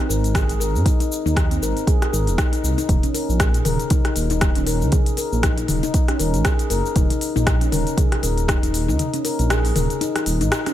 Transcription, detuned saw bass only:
0.09 0.44 G#1 medium
0.49 0.76 G#1 medium
0.75 0.83 G#2 loud
1.26 1.58 D#2 medium
1.62 1.73 G#1 loud
2.13 2.29 G#1 medium
2.27 2.36 D#1 medium
2.63 2.75 C2 medium
2.89 3.00 D#1 loud
3.29 3.61 A#1 medium
3.65 3.77 D#1 loud
4.16 4.51 D#1 medium
4.56 4.83 D#1 loud
4.81 4.90 D#2 loud
5.32 5.65 A#1 medium
5.69 5.80 D#1 loud
6.19 6.36 D#1 medium
6.34 6.43 A#1 loud
6.70 6.82 F#1 loud
6.96 7.07 D#1 loud
7.36 7.68 A#1 medium
7.72 7.83 D#1 loud
8.23 8.58 D#1 medium
8.63 8.90 D#1 medium
8.88 8.97 D#2 loud
9.39 9.72 A#1 medium
9.76 9.87 D#1 loud
10.26 10.42 D#1 medium
10.41 10.49 A#1 loud

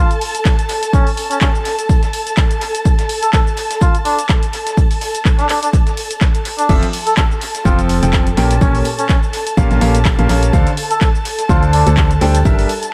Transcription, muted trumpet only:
0.00 0.12 F4 medium
0.93 1.08 C#4 medium
1.31 1.37 C#4 medium
1.41 1.50 C#4 medium
3.23 3.29 A4 medium
3.33 3.42 A4 medium
3.81 3.96 F4 medium
4.05 4.20 D4 loud
5.39 5.47 D4 loud
5.49 5.58 D4 medium
5.63 5.69 D4 medium
6.59 6.75 D4 medium
7.07 7.13 A4 medium
7.17 7.26 A4 medium
7.65 7.80 F4 medium
8.61 8.76 C#4 medium
8.99 9.05 C#4 medium
9.09 9.18 C#4 medium
10.91 10.97 A4 medium
11.01 11.10 A4 medium
11.49 11.64 F4 medium
11.73 11.88 D4 medium

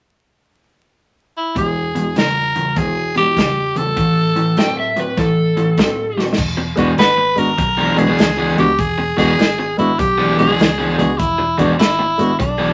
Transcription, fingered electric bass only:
6.38 6.75 E1 medium
6.78 6.97 E1 medium
6.98 7.35 G#1 medium
7.38 7.57 G#1 medium
7.58 7.95 B1 medium
7.98 8.17 B1 medium
8.19 8.56 C#2 medium
8.58 8.78 C#2 medium
8.79 9.16 E1 medium
9.18 9.38 E1 medium
9.39 9.76 G#1 medium
9.79 9.98 G#1 medium
9.99 10.36 B1 medium
10.39 10.58 B1 medium
10.59 10.96 C#2 medium
10.99 11.18 C#2 medium
11.20 11.57 E1 medium
11.59 11.78 E1 medium
11.79 12.17 G#1 loud
12.19 12.38 G#1 medium
12.40 12.73 B1 medium

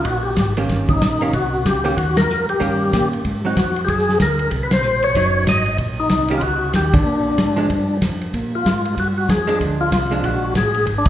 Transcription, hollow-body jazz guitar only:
0.57 0.99 D#3 medium
0.57 0.99 A#3 medium
0.57 0.99 C#4 medium
0.57 0.99 G4 medium
1.22 1.32 D#3 medium
1.22 1.32 A#3 medium
1.22 1.33 C#4 medium
1.22 1.33 G4 medium
1.84 1.95 D#3 medium
1.84 1.96 A#3 medium
1.84 1.96 C#4 medium
1.84 1.96 G4 medium
2.60 3.07 D#3 medium
2.60 3.08 A#3 medium
2.60 3.08 C#4 medium
2.60 3.08 G4 medium
3.45 3.55 F#3 medium
3.45 3.56 C4 soft
3.45 3.56 D#4 medium
5.16 5.63 F#3 medium
5.16 5.63 D#4 medium
6.30 6.41 D#3 medium
6.30 6.41 A#3 medium
6.30 6.42 C#4 medium
6.30 6.42 G4 medium
7.56 7.68 F3 medium
7.56 7.69 G#3 medium
7.56 7.69 D4 medium
9.47 9.89 F3 medium
9.47 9.89 G#3 medium
9.47 9.90 D4 medium
10.11 10.53 F3 soft
10.11 10.53 G#3 medium
10.11 10.53 D4 medium

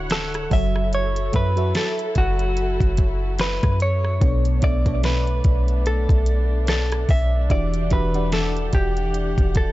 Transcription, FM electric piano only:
0.00 0.53 D3 medium
0.00 0.53 D4 medium
0.00 0.51 F#4 medium
0.00 0.52 C#5 medium
0.00 0.52 E5 medium
0.00 0.53 F#5 medium
0.50 1.19 F#3 medium
0.50 1.19 F#4 medium
0.50 1.20 A4 medium
0.50 1.20 C#5 medium
0.50 1.20 E5 medium
1.33 1.48 F#3 medium
1.33 1.48 F#4 medium
1.33 1.48 A4 medium
1.33 1.49 C#5 medium
1.33 1.49 E5 medium
1.56 2.56 F#3 medium
1.56 2.56 F#4 medium
1.56 2.56 A4 medium
1.56 2.57 C#5 medium
1.56 2.57 E5 medium
4.20 4.49 B2 medium
4.20 4.49 B3 medium
4.20 4.49 D4 medium
4.20 4.49 A4 medium
4.20 4.50 C#5 medium
4.61 4.77 B2 medium
4.61 4.77 B3 medium
4.61 4.77 D4 medium
4.61 4.77 A4 medium
4.61 4.77 E5 medium
4.85 5.85 B2 medium
4.85 5.85 B3 medium
4.85 5.85 D4 medium
4.85 5.85 A4 medium
4.85 4.92 C#5 medium
4.93 5.89 D5 medium
7.49 7.78 E3 medium
7.49 7.78 D4 medium
7.49 7.78 F#4 medium
7.49 7.78 G4 medium
7.49 7.78 E5 medium
7.90 8.05 E3 medium
7.90 8.06 D4 medium
7.90 8.06 F#4 medium
7.90 8.06 G4 medium
7.90 8.06 E5 medium
8.14 9.14 E3 medium
8.14 9.14 D4 medium
8.14 9.14 G4 medium
8.14 9.14 D5 medium
8.14 9.14 F#5 medium

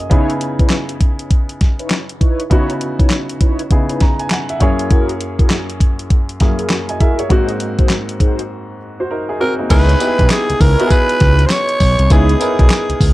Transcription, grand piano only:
0.00 0.11 F#2 medium
0.00 0.11 A#3 soft
0.00 0.11 C#4 soft
0.00 0.11 E4 medium
0.00 0.10 G#4 medium
0.00 0.12 D#5 medium
0.00 0.13 G#5 medium
0.00 0.12 A#5 medium
0.10 2.46 C#3 medium
0.10 2.46 B3 medium
0.10 2.47 D#4 medium
0.10 2.47 E4 medium
0.10 2.47 G#4 medium
2.50 3.68 C#3 medium
2.50 3.68 B3 medium
2.50 3.68 D#4 medium
2.50 3.69 E4 medium
2.50 3.69 F#4 medium
3.71 4.61 C#3 medium
3.71 4.61 B3 medium
3.71 4.61 D#4 medium
3.71 4.61 E4 medium
3.71 4.61 G#4 medium
4.02 4.19 A#5 medium
4.20 4.30 G#5 medium
4.31 4.48 F#5 medium
4.50 4.60 E5 medium
4.60 6.37 F#2 medium
4.60 6.37 A#3 medium
4.60 6.37 C#4 medium
4.60 6.38 E4 medium
4.60 6.38 G#4 medium
4.60 4.89 C#5 medium
6.41 7.31 F#2 medium
6.41 7.28 A#3 soft
6.41 7.31 C#4 medium
6.41 7.31 E4 medium
6.41 6.71 G#4 medium
6.89 7.00 D#5 medium
6.89 7.00 G#5 medium
7.01 7.19 A#4 medium
7.01 7.18 E5 medium
7.19 7.48 G#4 soft
7.19 7.48 C#5 medium
7.29 9.66 G#2 medium
7.29 8.77 A#3 medium
7.29 8.78 C4 medium
7.29 8.78 D#4 medium
7.29 8.78 F#4 medium
9.00 9.11 F#4 soft
9.00 9.10 C5 medium
9.11 9.28 D#4 medium
9.11 9.28 A#4 medium
9.29 9.40 D#4 medium
9.29 9.40 G#4 medium
9.40 9.58 C4 medium
9.40 9.58 F#4 medium
9.59 9.88 A#3 medium
9.59 9.68 D#4 medium
9.69 9.96 B3 medium
9.69 9.96 D#4 medium
9.69 9.96 E4 medium
9.69 9.96 G#4 medium
9.99 10.61 B3 medium
9.99 10.61 D#4 medium
9.99 10.62 E4 medium
9.99 10.09 G4 medium
10.07 10.65 G#4 medium
10.79 11.75 B3 medium
10.79 11.75 D#4 medium
10.79 11.75 E4 medium
10.79 10.85 F#4 medium
10.87 11.79 G#4 loud
12.10 12.36 B3 medium
12.10 12.36 D#4 medium
12.10 12.36 E4 medium
12.10 12.37 G#4 medium
12.40 13.13 B3 medium
12.40 13.13 D#4 medium
12.40 13.13 E4 medium
12.40 13.13 A#4 medium

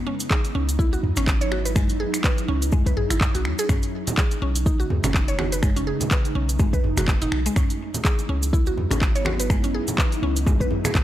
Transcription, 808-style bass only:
0.55 0.97 C#2 loud
1.03 1.12 E2 medium
1.17 2.05 G#1 medium
2.48 2.98 C#2 loud
2.97 3.05 G#1 medium
3.11 3.20 G#1 loud
3.21 3.29 F#2 medium
3.35 3.47 B1 loud
3.45 3.54 E2 medium
3.69 3.78 B1 medium
4.42 4.84 B1 medium
4.90 4.99 D#2 medium
5.04 5.92 F#1 medium
6.35 6.85 B1 loud
6.84 6.92 F#1 medium
6.97 7.25 F#1 loud
7.32 7.48 B1 loud
7.56 7.65 C#2 loud
8.29 8.71 C#2 loud
8.77 8.86 E2 medium
8.91 9.79 G#1 loud
10.22 10.64 C#2 loud
10.95 11.04 G#1 loud

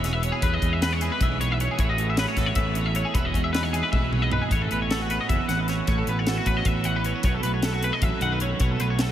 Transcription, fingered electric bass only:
0.00 0.30 E1 medium
0.43 0.58 E2 medium
0.62 1.08 E2 medium
1.21 1.67 B1 medium
1.78 2.25 A1 medium
2.37 2.53 A1 medium
2.56 3.03 A1 medium
3.14 3.30 E1 medium
3.34 3.80 E2 medium
3.93 4.39 B1 medium
4.51 4.67 A1 medium
4.71 5.17 A1 medium
5.30 5.37 F#1 medium
5.49 5.80 A1 medium
5.88 6.04 A1 medium
6.07 6.38 A1 medium
6.46 6.62 A1 medium
6.65 7.12 A1 medium
7.24 7.40 B1 medium
7.44 7.90 B1 medium
8.02 8.10 A1 medium
8.21 8.52 B1 medium
8.60 8.76 B1 medium
8.80 9.11 B1 medium

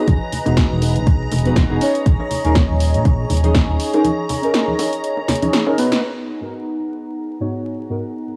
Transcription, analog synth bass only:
0.08 0.18 E1 loud
0.46 0.63 E1 loud
0.71 0.97 E1 loud
0.96 1.27 B1 medium
1.32 1.64 E1 medium
1.70 1.78 E1 loud
2.06 2.16 D#1 loud
2.45 2.62 D#1 loud
2.69 2.96 D#1 loud
2.94 3.25 A#1 medium
3.30 3.62 D#1 medium
3.69 3.77 D#1 loud

